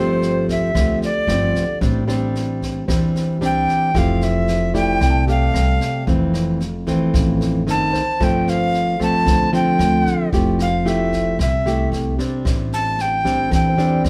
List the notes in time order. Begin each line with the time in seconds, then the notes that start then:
Already playing: G1 G2 F3 A3 C4 G4 C5
0.22 snare
0.48 E5, kick, snare
0.75 D2 D3 F3 A3 C4, kick, cross-stick, snare
1.02 D5, snare
1.27 G1 F3 A3 C4, cross-stick, snare
1.55 kick, snare
1.81 A1 A2 G3 C4 D4, kick, snare
2.08 G3 C4 D4, cross-stick, snare
2.35 snare
2.62 kick, snare
2.88 E2 E3 G3 C4 D4 C5, kick, cross-stick, snare
3.15 snare
3.41 C2 G3 C4 D4, snare
3.45 G5
3.68 kick, snare
3.95 F1 F3 A3 E4 G4 F5, kick, cross-stick, snare
4.21 E5, snare
4.48 snare
4.74 A3 E4 G4 D5 G5, kick, snare
4.93 G5
5.01 C2 C3, kick, cross-stick, snare
5.10 A5
5.27 A3 G4 F5, snare
5.54 C2, cross-stick, snare
5.81 kick, snare
6.07 F1 F2 E3 A3 C4, kick, snare
6.34 cross-stick, snare
6.60 snare
6.87 E3 A3 C4, kick, snare
7.13 A1 F2, kick, cross-stick, snare
7.41 snare
7.67 F#1 D#3 A3 C4 A5, snare
7.93 C5, kick, snare
8.20 G1 G2 F3 A3 C4 G5, kick, cross-stick, snare
8.47 F5, snare
8.74 snare
9.00 F3 A3 C4 A5, kick, snare
9.26 D2 D3, kick, cross-stick, snare
9.53 F3 A3 C4 G5, snare
9.79 D2, cross-stick, snare
10.06 kick, snare
10.32 F1 F3 A3 E4 G4, kick, snare
10.59 F5, cross-stick, snare
10.85 A3 E4 G4 E5, snare
11.12 kick, snare
11.39 C2 C3 E5, kick, cross-stick, snare
11.66 A3 E4 G4, snare
11.92 C2, snare
12.19 G3 C4 D4, kick, snare
12.45 A1 A2, kick, cross-stick, snare
12.72 A5, snare
12.98 G5, snare
13.25 G3 C4 D4, kick, snare
13.51 E2 E3 A4 G5, kick, cross-stick, snare
13.69 C5
13.78 G3 C4 D4, snare
13.88 D5
14.04 E2, cross-stick, snare